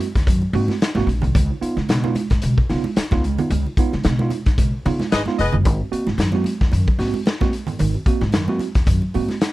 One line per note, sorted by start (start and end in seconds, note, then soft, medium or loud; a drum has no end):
0.00 0.06 C4 soft
0.00 0.07 F#4 soft
0.00 closed hi-hat medium
0.15 0.26 D#2 medium
0.15 kick medium
0.15 snare soft
0.15 closed hi-hat medium
0.27 0.40 F#2 loud
0.27 0.42 G#2 medium
0.27 0.42 D#3 medium
0.27 kick medium
0.27 closed hi-hat medium
0.27 muted conga soft
0.42 muted conga soft
0.53 0.67 G#2 loud
0.53 0.69 A#3 medium
0.53 0.69 C4 medium
0.53 0.69 F#4 medium
0.53 open hi-hat medium
0.68 0.74 C4 soft
0.68 0.75 F#4 soft
0.68 snare soft
0.68 high conga medium
0.81 snare loud
0.81 closed hi-hat medium
0.81 muted conga soft
0.95 1.06 G#1 loud
0.95 1.08 A#3 medium
0.95 1.08 C4 medium
0.95 1.08 F#4 loud
0.95 snare soft
0.95 muted conga soft
0.95 high conga medium
1.07 1.21 A#1 loud
1.07 closed hi-hat medium
1.22 1.33 C2 loud
1.22 1.35 G#2 medium
1.22 1.35 D#3 medium
1.22 closed hi-hat medium
1.22 low conga medium
1.35 1.48 C#2 loud
1.35 1.50 C#3 medium
1.35 1.50 G#3 medium
1.35 kick loud
1.35 closed hi-hat medium
1.35 low conga medium
1.50 1.55 D#4 soft
1.50 1.55 F4 soft
1.61 1.76 B3 medium
1.61 1.76 D#4 medium
1.61 1.76 F4 medium
1.61 muted upright bass stroke soft
1.61 closed hi-hat medium
1.77 1.89 C#3 medium
1.77 snare soft
1.77 high conga medium
1.89 2.12 B2 loud
1.89 2.03 C#3 medium
1.89 2.03 G#3 medium
1.89 snare loud
1.89 closed hi-hat medium
1.89 muted conga soft
2.03 2.15 B3 medium
2.03 2.15 D#4 medium
2.03 2.15 F4 medium
2.03 muted conga soft
2.03 high conga medium
2.15 2.22 D#4 soft
2.15 2.22 F4 soft
2.15 closed hi-hat medium
2.15 high conga medium
2.30 2.41 G#2 medium
2.30 kick medium
2.30 snare soft
2.30 closed hi-hat soft
2.42 2.56 B2 loud
2.42 2.57 C#3 medium
2.42 2.57 G#3 medium
2.42 closed hi-hat medium
2.42 muted conga soft
2.58 kick medium
2.69 2.83 C#3 loud
2.69 2.84 B3 medium
2.69 2.84 D#4 medium
2.69 2.84 F4 medium
2.69 snare soft
2.69 open hi-hat medium
2.84 2.89 D#4 soft
2.84 2.89 F4 medium
2.84 high conga medium
2.96 muted upright bass stroke soft
2.96 snare loud
2.96 closed hi-hat medium
2.96 muted conga soft
3.11 3.35 C#2 loud
3.11 3.23 B3 medium
3.11 3.23 D#4 medium
3.11 3.23 F4 loud
3.11 kick loud
3.11 snare soft
3.11 muted conga soft
3.11 high conga medium
3.24 3.38 C#3 medium
3.24 3.38 G#3 medium
3.24 closed hi-hat medium
3.38 3.50 B3 medium
3.38 3.50 D#4 medium
3.38 3.50 F4 medium
3.38 closed hi-hat medium
3.38 low conga medium
3.50 3.63 C#2 loud
3.50 3.65 C#3 medium
3.50 3.65 G#3 medium
3.50 closed hi-hat medium
3.50 muted conga soft
3.50 low conga medium
3.66 3.71 D#4 soft
3.66 3.71 F4 soft
3.66 muted conga soft
3.77 3.92 B3 medium
3.77 3.92 D#4 medium
3.77 3.92 F4 medium
3.77 muted upright bass stroke soft
3.77 kick medium
3.77 closed hi-hat medium
3.77 high conga soft
3.92 4.03 C#3 loud
3.92 snare soft
3.92 high conga medium
4.04 4.28 B2 loud
4.04 4.19 C#3 medium
4.04 4.19 G#3 medium
4.04 snare loud
4.04 closed hi-hat medium
4.04 muted conga soft
4.19 4.31 B3 medium
4.19 4.31 D#4 medium
4.19 4.31 F4 medium
4.19 muted conga soft
4.19 high conga medium
4.30 4.38 D#4 soft
4.30 4.37 F4 soft
4.30 closed hi-hat medium
4.30 high conga medium
4.46 4.56 G#2 medium
4.46 kick medium
4.46 snare soft
4.46 closed hi-hat soft
4.58 4.71 B2 medium
4.58 4.73 C#3 medium
4.58 4.73 G#3 medium
4.58 kick medium
4.58 closed hi-hat medium
4.58 muted conga soft
4.86 4.98 C#3 loud
4.86 5.00 B3 medium
4.86 5.00 D#4 medium
4.86 5.00 F4 medium
4.86 open hi-hat medium
5.00 5.05 D#4 soft
5.00 5.05 F4 soft
5.00 snare soft
5.00 high conga medium
5.12 5.25 G#1 medium
5.12 5.21 G#4 medium
5.12 5.21 B4 medium
5.12 5.21 D#5 loud
5.12 snare loud
5.12 closed hi-hat medium
5.26 5.38 B3 medium
5.26 5.38 D#4 medium
5.26 5.38 F4 loud
5.26 snare soft
5.26 high conga medium
5.39 5.52 F1 medium
5.39 5.56 G#4 loud
5.39 5.56 B4 loud
5.39 5.56 D#5 loud
5.39 closed hi-hat medium
5.52 5.66 F#1 medium
5.52 5.65 C#3 medium
5.52 5.65 G#3 medium
5.52 low conga medium
5.65 5.78 G#1 loud
5.65 5.80 G#2 medium
5.65 kick loud
5.65 closed hi-hat medium
5.65 low conga medium
5.81 5.85 C4 soft
5.81 5.85 F#4 soft
5.92 6.06 A#3 medium
5.92 6.06 C4 medium
5.92 6.06 F#4 medium
5.92 muted upright bass stroke medium
5.92 closed hi-hat medium
6.07 6.17 G#2 medium
6.07 snare soft
6.07 high conga medium
6.18 6.42 F#2 loud
6.18 6.34 G#2 medium
6.18 6.33 D#3 medium
6.18 snare loud
6.18 closed hi-hat medium
6.18 muted conga soft
6.32 6.45 A#3 medium
6.32 6.44 C4 medium
6.32 6.44 F#4 medium
6.32 muted conga soft
6.32 high conga medium
6.44 6.52 C4 soft
6.44 6.52 F#4 soft
6.44 closed hi-hat medium
6.44 high conga medium
6.61 6.71 D#2 medium
6.61 kick medium
6.61 snare soft
6.72 6.86 F#2 loud
6.72 6.87 G#2 medium
6.72 6.87 D#3 medium
6.72 closed hi-hat medium
6.72 muted conga soft
6.88 kick medium
6.88 muted conga soft
6.99 7.12 G#2 loud
6.99 7.14 A#3 medium
6.99 7.14 C4 medium
6.99 7.14 F#4 medium
6.99 snare soft
6.99 open hi-hat medium
7.14 7.19 C4 soft
7.14 7.19 F#4 medium
7.14 high conga medium
7.26 snare loud
7.26 closed hi-hat medium
7.26 muted conga soft
7.41 7.53 A#3 medium
7.41 7.53 C4 medium
7.41 7.53 F#4 medium
7.41 kick medium
7.41 snare soft
7.41 muted conga soft
7.41 high conga medium
7.53 closed hi-hat medium
7.67 7.79 G#2 medium
7.67 7.79 D#3 medium
7.67 closed hi-hat medium
7.67 low conga medium
7.79 7.93 G#1 loud
7.79 7.95 G#2 medium
7.79 7.95 D#3 medium
7.79 closed hi-hat loud
7.79 muted conga soft
7.79 low conga medium
7.94 8.00 C4 soft
7.94 8.00 F#4 soft
7.94 muted conga soft
8.06 8.21 A#3 medium
8.06 8.21 C4 medium
8.06 8.22 F#4 medium
8.06 muted upright bass stroke medium
8.06 kick medium
8.06 closed hi-hat medium
8.21 8.33 G#2 loud
8.21 snare soft
8.21 high conga medium
8.32 8.57 F#2 loud
8.32 8.49 G#2 medium
8.32 8.49 D#3 medium
8.32 snare loud
8.32 closed hi-hat medium
8.32 muted conga soft
8.48 8.60 A#3 medium
8.48 8.59 C4 medium
8.48 8.59 F#4 medium
8.48 high conga medium
8.59 8.67 C4 soft
8.59 8.67 F#4 medium
8.59 closed hi-hat medium
8.59 high conga medium
8.75 8.86 D#2 medium
8.75 kick medium
8.75 snare soft
8.75 closed hi-hat soft
8.86 9.00 F#2 loud
8.86 9.02 G#2 medium
8.86 9.02 D#3 medium
8.86 kick medium
8.86 closed hi-hat medium
8.86 muted conga soft
9.02 muted conga soft
9.14 9.28 G#2 loud
9.14 9.29 A#3 medium
9.14 9.28 C4 medium
9.14 9.29 F#4 medium
9.14 open hi-hat medium
9.28 9.34 C4 soft
9.28 9.35 F#4 soft
9.28 snare soft
9.28 high conga medium
9.41 snare loud
9.41 closed hi-hat medium